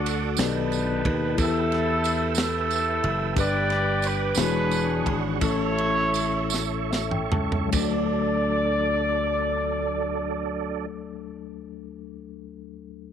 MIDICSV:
0, 0, Header, 1, 6, 480
1, 0, Start_track
1, 0, Key_signature, 2, "major"
1, 0, Tempo, 662983
1, 1001, Time_signature, 6, 3, 24, 8
1, 2923, Tempo, 690449
1, 3883, Tempo, 729927
1, 4363, Tempo, 793651
1, 5323, Tempo, 846262
1, 8380, End_track
2, 0, Start_track
2, 0, Title_t, "Tonewheel organ"
2, 0, Program_c, 0, 16
2, 0, Note_on_c, 0, 69, 62
2, 0, Note_on_c, 0, 74, 61
2, 0, Note_on_c, 0, 78, 62
2, 0, Note_on_c, 0, 86, 69
2, 259, Note_off_c, 0, 69, 0
2, 274, Note_off_c, 0, 74, 0
2, 275, Note_off_c, 0, 78, 0
2, 275, Note_off_c, 0, 86, 0
2, 276, Note_on_c, 0, 79, 64
2, 281, Note_on_c, 0, 81, 65
2, 284, Note_on_c, 0, 71, 67
2, 991, Note_off_c, 0, 79, 0
2, 993, Note_off_c, 0, 81, 0
2, 1009, Note_on_c, 0, 88, 73
2, 1011, Note_on_c, 0, 79, 64
2, 1012, Note_on_c, 0, 76, 60
2, 2428, Note_off_c, 0, 88, 0
2, 2430, Note_off_c, 0, 76, 0
2, 2439, Note_on_c, 0, 74, 61
2, 2442, Note_on_c, 0, 86, 74
2, 3129, Note_off_c, 0, 71, 0
2, 3141, Note_off_c, 0, 79, 0
2, 3145, Note_on_c, 0, 78, 68
2, 3147, Note_on_c, 0, 68, 70
2, 3147, Note_on_c, 0, 85, 82
2, 3150, Note_off_c, 0, 74, 0
2, 3151, Note_off_c, 0, 86, 0
2, 3152, Note_on_c, 0, 62, 69
2, 3868, Note_off_c, 0, 78, 0
2, 3869, Note_off_c, 0, 68, 0
2, 3871, Note_on_c, 0, 76, 65
2, 3872, Note_off_c, 0, 62, 0
2, 3873, Note_on_c, 0, 69, 70
2, 3875, Note_on_c, 0, 73, 61
2, 5297, Note_off_c, 0, 85, 0
2, 5303, Note_off_c, 0, 76, 0
2, 5304, Note_off_c, 0, 69, 0
2, 5305, Note_off_c, 0, 73, 0
2, 5315, Note_on_c, 0, 69, 59
2, 5316, Note_on_c, 0, 54, 67
2, 5318, Note_on_c, 0, 74, 73
2, 5322, Note_on_c, 0, 62, 58
2, 7093, Note_off_c, 0, 69, 0
2, 7094, Note_off_c, 0, 54, 0
2, 7095, Note_off_c, 0, 74, 0
2, 7099, Note_off_c, 0, 62, 0
2, 8380, End_track
3, 0, Start_track
3, 0, Title_t, "Horn section"
3, 0, Program_c, 1, 61
3, 0, Note_on_c, 1, 66, 78
3, 0, Note_on_c, 1, 69, 77
3, 259, Note_off_c, 1, 69, 0
3, 260, Note_off_c, 1, 66, 0
3, 292, Note_on_c, 1, 71, 88
3, 297, Note_on_c, 1, 63, 66
3, 299, Note_on_c, 1, 62, 65
3, 977, Note_off_c, 1, 71, 0
3, 980, Note_off_c, 1, 62, 0
3, 980, Note_off_c, 1, 63, 0
3, 1007, Note_on_c, 1, 69, 103
3, 1009, Note_on_c, 1, 64, 76
3, 1695, Note_off_c, 1, 64, 0
3, 1716, Note_off_c, 1, 69, 0
3, 1725, Note_on_c, 1, 69, 97
3, 1732, Note_on_c, 1, 64, 67
3, 2412, Note_off_c, 1, 69, 0
3, 2415, Note_off_c, 1, 64, 0
3, 2452, Note_on_c, 1, 67, 93
3, 2452, Note_on_c, 1, 71, 87
3, 2453, Note_on_c, 1, 74, 114
3, 2928, Note_off_c, 1, 74, 0
3, 2930, Note_off_c, 1, 71, 0
3, 2939, Note_on_c, 1, 71, 95
3, 3135, Note_off_c, 1, 67, 0
3, 3158, Note_off_c, 1, 71, 0
3, 3165, Note_on_c, 1, 62, 78
3, 3166, Note_on_c, 1, 68, 77
3, 3166, Note_on_c, 1, 71, 103
3, 3659, Note_off_c, 1, 71, 0
3, 3773, Note_off_c, 1, 62, 0
3, 3773, Note_off_c, 1, 68, 0
3, 3891, Note_on_c, 1, 64, 80
3, 3893, Note_on_c, 1, 69, 80
3, 3896, Note_on_c, 1, 73, 115
3, 4807, Note_off_c, 1, 64, 0
3, 4808, Note_off_c, 1, 69, 0
3, 4809, Note_off_c, 1, 73, 0
3, 5324, Note_on_c, 1, 74, 99
3, 7101, Note_off_c, 1, 74, 0
3, 8380, End_track
4, 0, Start_track
4, 0, Title_t, "Tine electric piano"
4, 0, Program_c, 2, 4
4, 0, Control_c, 2, 64, 127
4, 0, Note_on_c, 2, 50, 64
4, 0, Note_on_c, 2, 62, 69
4, 0, Note_on_c, 2, 66, 61
4, 0, Note_on_c, 2, 69, 74
4, 251, Note_off_c, 2, 50, 0
4, 265, Note_on_c, 2, 59, 63
4, 270, Note_on_c, 2, 51, 59
4, 274, Note_off_c, 2, 62, 0
4, 275, Note_off_c, 2, 69, 0
4, 277, Note_on_c, 2, 47, 61
4, 277, Note_on_c, 2, 67, 57
4, 280, Note_off_c, 2, 66, 0
4, 283, Note_on_c, 2, 69, 58
4, 287, Note_on_c, 2, 74, 69
4, 291, Control_c, 2, 64, 0
4, 424, Control_c, 2, 64, 127
4, 969, Note_off_c, 2, 47, 0
4, 975, Note_on_c, 2, 64, 70
4, 989, Note_off_c, 2, 67, 0
4, 992, Note_off_c, 2, 59, 0
4, 995, Note_off_c, 2, 51, 0
4, 997, Note_on_c, 2, 67, 59
4, 1000, Note_on_c, 2, 52, 62
4, 1002, Note_off_c, 2, 69, 0
4, 1003, Note_off_c, 2, 74, 0
4, 1010, Control_c, 2, 64, 0
4, 1023, Note_on_c, 2, 70, 59
4, 1059, Note_off_c, 2, 70, 0
4, 1072, Note_on_c, 2, 71, 74
4, 1120, Control_c, 2, 64, 127
4, 1690, Note_off_c, 2, 52, 0
4, 2397, Note_off_c, 2, 64, 0
4, 2408, Note_off_c, 2, 67, 0
4, 2429, Note_on_c, 2, 62, 65
4, 2436, Note_on_c, 2, 43, 68
4, 2441, Note_on_c, 2, 67, 62
4, 2446, Note_off_c, 2, 71, 0
4, 2447, Control_c, 2, 64, 0
4, 2453, Note_on_c, 2, 71, 78
4, 2563, Control_c, 2, 64, 127
4, 3127, Note_off_c, 2, 43, 0
4, 3140, Note_off_c, 2, 62, 0
4, 3143, Note_on_c, 2, 56, 64
4, 3148, Note_on_c, 2, 62, 59
4, 3152, Note_on_c, 2, 64, 58
4, 3153, Note_on_c, 2, 52, 63
4, 3158, Note_off_c, 2, 67, 0
4, 3158, Note_on_c, 2, 66, 63
4, 3163, Note_off_c, 2, 71, 0
4, 3164, Control_c, 2, 64, 0
4, 3166, Note_on_c, 2, 72, 56
4, 3207, Note_off_c, 2, 72, 0
4, 3212, Note_on_c, 2, 73, 71
4, 3308, Control_c, 2, 64, 127
4, 3852, Note_off_c, 2, 52, 0
4, 3860, Note_on_c, 2, 61, 69
4, 3873, Note_off_c, 2, 64, 0
4, 3875, Note_off_c, 2, 56, 0
4, 3877, Note_off_c, 2, 62, 0
4, 3880, Note_on_c, 2, 45, 70
4, 3881, Note_on_c, 2, 64, 63
4, 3882, Note_off_c, 2, 66, 0
4, 3889, Control_c, 2, 64, 0
4, 3903, Note_on_c, 2, 69, 77
4, 3908, Note_off_c, 2, 73, 0
4, 3993, Control_c, 2, 64, 127
4, 4566, Note_off_c, 2, 45, 0
4, 4822, Note_on_c, 2, 76, 65
4, 4936, Note_off_c, 2, 76, 0
4, 4950, Note_on_c, 2, 79, 66
4, 5063, Note_off_c, 2, 79, 0
4, 5069, Note_on_c, 2, 81, 64
4, 5285, Note_on_c, 2, 54, 84
4, 5288, Note_off_c, 2, 61, 0
4, 5297, Note_off_c, 2, 64, 0
4, 5303, Note_off_c, 2, 81, 0
4, 5307, Note_off_c, 2, 69, 0
4, 5307, Note_on_c, 2, 57, 75
4, 5323, Note_on_c, 2, 38, 81
4, 5329, Control_c, 2, 64, 0
4, 5331, Note_on_c, 2, 62, 76
4, 5360, Note_on_c, 2, 69, 90
4, 5423, Control_c, 2, 64, 127
4, 7064, Note_off_c, 2, 54, 0
4, 7084, Note_off_c, 2, 57, 0
4, 7100, Note_off_c, 2, 38, 0
4, 7108, Note_off_c, 2, 62, 0
4, 7136, Note_off_c, 2, 69, 0
4, 8380, End_track
5, 0, Start_track
5, 0, Title_t, "Slap bass"
5, 0, Program_c, 3, 36
5, 0, Note_on_c, 3, 38, 102
5, 254, Note_off_c, 3, 38, 0
5, 277, Note_on_c, 3, 35, 96
5, 730, Note_off_c, 3, 35, 0
5, 762, Note_on_c, 3, 39, 78
5, 982, Note_off_c, 3, 39, 0
5, 1001, Note_on_c, 3, 40, 101
5, 2170, Note_off_c, 3, 40, 0
5, 2199, Note_on_c, 3, 30, 83
5, 2419, Note_off_c, 3, 30, 0
5, 2436, Note_on_c, 3, 31, 96
5, 3128, Note_off_c, 3, 31, 0
5, 3156, Note_on_c, 3, 28, 104
5, 3608, Note_off_c, 3, 28, 0
5, 3632, Note_on_c, 3, 32, 88
5, 3860, Note_off_c, 3, 32, 0
5, 3878, Note_on_c, 3, 33, 103
5, 5044, Note_off_c, 3, 33, 0
5, 5072, Note_on_c, 3, 37, 76
5, 5303, Note_off_c, 3, 37, 0
5, 5319, Note_on_c, 3, 38, 90
5, 7096, Note_off_c, 3, 38, 0
5, 8380, End_track
6, 0, Start_track
6, 0, Title_t, "Drums"
6, 43, Note_on_c, 9, 54, 55
6, 45, Note_on_c, 9, 53, 61
6, 116, Note_off_c, 9, 54, 0
6, 118, Note_off_c, 9, 53, 0
6, 265, Note_on_c, 9, 54, 92
6, 282, Note_on_c, 9, 53, 74
6, 284, Note_on_c, 9, 38, 114
6, 337, Note_off_c, 9, 54, 0
6, 355, Note_off_c, 9, 53, 0
6, 356, Note_off_c, 9, 38, 0
6, 519, Note_on_c, 9, 53, 38
6, 526, Note_on_c, 9, 54, 59
6, 592, Note_off_c, 9, 53, 0
6, 599, Note_off_c, 9, 54, 0
6, 761, Note_on_c, 9, 36, 85
6, 762, Note_on_c, 9, 53, 57
6, 833, Note_off_c, 9, 36, 0
6, 835, Note_off_c, 9, 53, 0
6, 999, Note_on_c, 9, 53, 70
6, 1001, Note_on_c, 9, 36, 99
6, 1008, Note_on_c, 9, 54, 55
6, 1071, Note_off_c, 9, 53, 0
6, 1073, Note_off_c, 9, 36, 0
6, 1080, Note_off_c, 9, 54, 0
6, 1245, Note_on_c, 9, 53, 43
6, 1252, Note_on_c, 9, 38, 32
6, 1317, Note_off_c, 9, 53, 0
6, 1324, Note_off_c, 9, 38, 0
6, 1477, Note_on_c, 9, 54, 58
6, 1486, Note_on_c, 9, 53, 62
6, 1549, Note_off_c, 9, 54, 0
6, 1559, Note_off_c, 9, 53, 0
6, 1699, Note_on_c, 9, 54, 91
6, 1722, Note_on_c, 9, 53, 78
6, 1723, Note_on_c, 9, 38, 104
6, 1771, Note_off_c, 9, 54, 0
6, 1794, Note_off_c, 9, 53, 0
6, 1796, Note_off_c, 9, 38, 0
6, 1958, Note_on_c, 9, 53, 38
6, 1963, Note_on_c, 9, 54, 58
6, 2031, Note_off_c, 9, 53, 0
6, 2036, Note_off_c, 9, 54, 0
6, 2199, Note_on_c, 9, 53, 52
6, 2271, Note_off_c, 9, 53, 0
6, 2436, Note_on_c, 9, 36, 106
6, 2436, Note_on_c, 9, 53, 70
6, 2447, Note_on_c, 9, 54, 58
6, 2509, Note_off_c, 9, 36, 0
6, 2509, Note_off_c, 9, 53, 0
6, 2519, Note_off_c, 9, 54, 0
6, 2679, Note_on_c, 9, 53, 47
6, 2686, Note_on_c, 9, 38, 35
6, 2751, Note_off_c, 9, 53, 0
6, 2758, Note_off_c, 9, 38, 0
6, 2912, Note_on_c, 9, 54, 55
6, 2922, Note_on_c, 9, 53, 60
6, 2982, Note_off_c, 9, 54, 0
6, 2992, Note_off_c, 9, 53, 0
6, 3138, Note_on_c, 9, 54, 92
6, 3157, Note_on_c, 9, 53, 78
6, 3159, Note_on_c, 9, 38, 109
6, 3207, Note_off_c, 9, 54, 0
6, 3227, Note_off_c, 9, 53, 0
6, 3228, Note_off_c, 9, 38, 0
6, 3393, Note_on_c, 9, 53, 38
6, 3394, Note_on_c, 9, 54, 57
6, 3462, Note_off_c, 9, 53, 0
6, 3463, Note_off_c, 9, 54, 0
6, 3634, Note_on_c, 9, 36, 88
6, 3637, Note_on_c, 9, 53, 58
6, 3704, Note_off_c, 9, 36, 0
6, 3706, Note_off_c, 9, 53, 0
6, 3879, Note_on_c, 9, 53, 72
6, 3880, Note_on_c, 9, 36, 105
6, 3884, Note_on_c, 9, 54, 53
6, 3945, Note_off_c, 9, 53, 0
6, 3946, Note_off_c, 9, 36, 0
6, 3950, Note_off_c, 9, 54, 0
6, 4123, Note_on_c, 9, 53, 47
6, 4189, Note_off_c, 9, 53, 0
6, 4357, Note_on_c, 9, 54, 57
6, 4367, Note_on_c, 9, 53, 65
6, 4418, Note_off_c, 9, 54, 0
6, 4427, Note_off_c, 9, 53, 0
6, 4575, Note_on_c, 9, 54, 89
6, 4599, Note_on_c, 9, 38, 58
6, 4636, Note_off_c, 9, 54, 0
6, 4659, Note_off_c, 9, 38, 0
6, 4833, Note_on_c, 9, 38, 77
6, 4834, Note_on_c, 9, 54, 61
6, 4894, Note_off_c, 9, 38, 0
6, 4895, Note_off_c, 9, 54, 0
6, 4947, Note_on_c, 9, 45, 69
6, 5008, Note_off_c, 9, 45, 0
6, 5070, Note_on_c, 9, 43, 97
6, 5130, Note_off_c, 9, 43, 0
6, 5193, Note_on_c, 9, 43, 96
6, 5253, Note_off_c, 9, 43, 0
6, 5316, Note_on_c, 9, 53, 79
6, 5320, Note_on_c, 9, 36, 92
6, 5320, Note_on_c, 9, 54, 81
6, 5373, Note_off_c, 9, 53, 0
6, 5377, Note_off_c, 9, 36, 0
6, 5377, Note_off_c, 9, 54, 0
6, 8380, End_track
0, 0, End_of_file